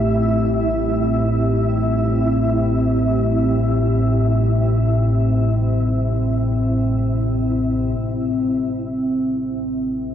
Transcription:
Already playing: A1 A2 C4 E4 G4 E5
7.97 A1 A2
8.16 A4

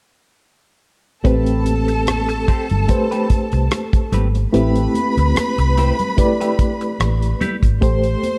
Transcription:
1.24 A1 A3 C4 G4 A4 B4 A5, kick, closed hi-hat
1.46 closed hi-hat
1.66 closed hi-hat, high conga
1.88 muted clean electric guitar stroke, closed hi-hat
2.07 cross-stick, closed hi-hat, high conga
2.29 muted clean electric guitar stroke, closed hi-hat
2.48 A3 C4 G4 C5, muted fingered electric bass stroke, kick, closed hi-hat
2.69 G1, muted clean electric guitar stroke, closed hi-hat, low conga
2.88 A3 G4 B4 C5, muted clean electric guitar stroke, kick, closed hi-hat, muted conga
3.11 A3 C4 G4 B4, closed hi-hat
3.30 muted fingered electric bass stroke, muted clean electric guitar stroke, kick, closed hi-hat, muted conga
3.52 C2, muted clean electric guitar stroke, closed hi-hat
3.71 muted clean electric guitar stroke, cross-stick, closed hi-hat, high conga
3.93 kick, closed hi-hat
4.12 G#1 A3 C4 G4 B4, closed hi-hat, muted conga, high conga, low conga
4.35 muted clean electric guitar stroke, closed hi-hat
4.52 A1 A3 C4 E4 G4 B4 B5, closed hi-hat
4.75 closed hi-hat
4.95 closed hi-hat, high conga
5.17 D2, muted clean electric guitar stroke, closed hi-hat
5.35 cross-stick, closed hi-hat, muted conga, high conga
5.58 C2, muted clean electric guitar stroke, closed hi-hat
5.77 A3 E4 G4 C5, closed hi-hat, muted conga
5.99 muted clean electric guitar stroke, closed hi-hat, low conga
6.17 A3 E4 G4 B4 D5, muted clean electric guitar stroke, kick, closed hi-hat, muted conga
6.41 A3 E4 G4 B4, closed hi-hat
6.59 muted clean electric guitar stroke, kick, closed hi-hat, muted conga
6.81 muted clean electric guitar stroke, closed hi-hat
7.00 A1, muted clean electric guitar stroke, cross-stick, closed hi-hat, high conga
7.22 closed hi-hat
7.41 A3 E4 G4 B4, closed hi-hat, muted conga, high conga, low conga
7.63 G#1, muted clean electric guitar stroke, kick, closed hi-hat
7.81 A1 A3 G4 A4 C5 C6, kick, closed hi-hat
8.03 closed hi-hat
8.23 closed hi-hat, muted conga, high conga

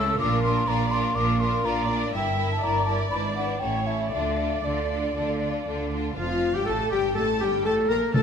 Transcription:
Already playing: C#2 C#3 A3 E4 A4 E6
0.18 A#1 A#2 D4 F4 A#4 D6
0.43 D4 F4 A#4 C6
0.67 A#1 A#2 D4 F4 A#4 D5 A#5
0.90 D4 F4 A#4 C6
1.15 A#1 A#2 D4 F4 A#4 D6
1.40 D4 F4 A#4 C6
1.64 A#1 A#2 D4 F4 A#4 D5 A#5
1.89 D4 F4 A#4
2.13 G1 G2 E4 A#4 E5 G5
2.37 E4 A#4
2.52 A5
2.63 G1 G2 E4 A#4 D5 A#5
2.86 E4 A#4 A5
3.10 G#1 G#2 D4 E4 B4 B5
3.35 D4 E4 B4 F#5
3.60 A1 A2 C#4 E4 A4 C#5 G5
3.86 C#4 E4 A4 E5
4.12 D2 D3 D4 F4 A4 D5 E5
4.38 D4 F4 A4
4.64 D2 D3 D4 F4 A4 D5
4.89 D4 F4 A4
5.15 D2 D3 D4 F4 A4
5.41 D4 F4 A4
5.66 D2 D3 D4 F4 A4
5.92 D4 F4 A4
6.17 F1 F2 F3 F4 F5
6.54 G2 G3 G4 G5
6.65 A1 A2 A3 A4 A5
6.90 G1 G2 G3 G4 G5
7.14 A1 A2 A3 A4 A5
7.40 G1 G2 G3 G4 G5
7.64 A1 A2 A3 A4 A5
7.88 A#1 A#2 A#3 A#4 A#5
8.13 A1 A2 D3 A3 A4 A5

